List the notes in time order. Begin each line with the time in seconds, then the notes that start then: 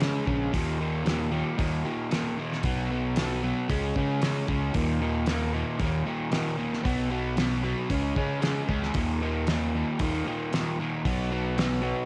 Already playing: C#3
0.01 C#3 G#3 C#4, snare, open hi-hat
0.27 A#1 C#3 G#3 C#4, kick
0.52 D#2 A#2 D#3, kick, open hi-hat
0.79 D#2 A#2 D#3
1.04 D#2 A#2 D#3, snare, open hi-hat
1.32 D#2 A#2 D#3
1.57 D#2 A#2 D#3, kick, open hi-hat
1.84 D#2 A#2 D#3
2.11 D#2 A#2 D#3, snare, open hi-hat
2.38 D#2 A#2 D#3
2.52 snare
2.63 B1 B2 F#3 B3, kick, open hi-hat
2.91 B2 F#3 B3
3.16 B2 F#3 B3, snare, open hi-hat
3.43 B2 F#3 B3
3.69 C#2 C#3 G#3 C#4, kick, open hi-hat
3.96 C#3 G#3 C#4, kick
4.22 C#3 G#3 C#4, snare, open hi-hat
4.48 C#2 C#3 G#3 C#4, kick
4.74 D#2 A#2 D#3, kick, open hi-hat
5.01 D#2 A#2 D#3
5.26 D#2 A#2 D#3, snare, open hi-hat
5.53 D#2 A#2 D#3
5.78 D#2 A#2 D#3, kick, open hi-hat
6.05 D#2 A#2 D#3
6.31 D#2 A#2 D#3, snare, open hi-hat
6.58 D#2 A#2 D#3
6.73 snare
6.84 B1 B2 F#3 B3, kick, open hi-hat
7.11 B2 F#3 B3
7.37 B2 F#3 B3, snare, open hi-hat
7.63 B2 F#3 B3
7.90 C#2 C#3 G#3 C#4, kick, open hi-hat
8.16 C#3 G#3 C#4, kick
8.40 C#3 G#3 C#4, snare, open hi-hat
8.68 C#2 C#3 G#3 C#4, kick
8.83 snare
8.94 D#2 A#2 D#3, kick, open hi-hat
9.22 D#2 A#2 D#3
9.47 D#2 A#2 D#3, snare, open hi-hat
9.75 D#2 A#2 D#3
9.99 D#2 A#2 D#3, kick, open hi-hat
10.25 D#2 A#2 D#3
10.53 D#2 A#2 D#3, snare, open hi-hat
10.79 D#2 A#2 D#3
11.05 B1 B2 F#3 B3, kick, open hi-hat
11.31 B2 F#3 B3
11.57 B2 F#3 B3, snare, open hi-hat
11.81 B2 F#3 B3